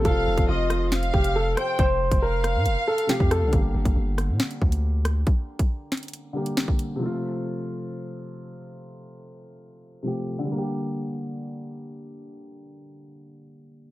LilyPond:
<<
  \new Staff \with { instrumentName = "Violin section" } { \time 4/4 \key g \minor \tempo 4 = 138 f''4 ees''4 f''4. g''8 | r4 f''2. | r1 | r1 |
r1 | r1 | r1 | r1 | }
  \new Staff \with { instrumentName = "Grand piano" } { \time 4/4 \key g \minor a'4 f'4 r8 g'8 a'8 c''8 | c''4 bes'4. a'8 g'8 a'8 | r1 | r1 |
r1 | r1 | r1 | r1 | }
  \new Staff \with { instrumentName = "Grand piano" } { \clef bass \time 4/4 \key g \minor <c f c' f'>1~ | <c f c' f'>2. <c f a g'>4 | <d g bes g'>1~ | <d g bes g'>2~ <d g bes g'>8 <d g bes g'>4. |
<c f a f'>1~ | <c f a f'>2. <c f a g'>4 | <d g bes g'>1~ | <d g bes g'>1 | }
  \new Staff \with { instrumentName = "808-style bass" } { \clef bass \time 4/4 \key g \minor f,,8 f,,16 f,,16 f,,4. f,,4 r8 | f,,8. f,,4 a,16 f,,16 r4 f,8 c,16 | g,,8 g,,16 g,,16 g,,8. bes,16 r8 d,4. | r1 |
r1 | r1 | r1 | r1 | }
  \new DrumStaff \with { instrumentName = "Drums" } \drummode { \time 4/4 <hh bd>8. <hh bd>16 r8 <hh ss>8 <hh sn>16 hh16 bd16 hh16 r8 <hh ss>8 | <hh bd>8. <hh bd>16 r8 <hh ss>8 hh8. hh16 sn16 bd16 <hh ss>8 | <hh bd>8. <hh bd>16 r8 <hh ss>8 <hh sn>16 hh16 bd16 hh16 r8 <hh ss>8 | <hh bd>8. <hh bd>16 r8 <hh sn>32 hh32 hh32 hh32 hh8. hh16 sn16 bd16 hh8 |
r4 r4 r4 r4 | r4 r4 r4 r4 | r4 r4 r4 r4 | r4 r4 r4 r4 | }
>>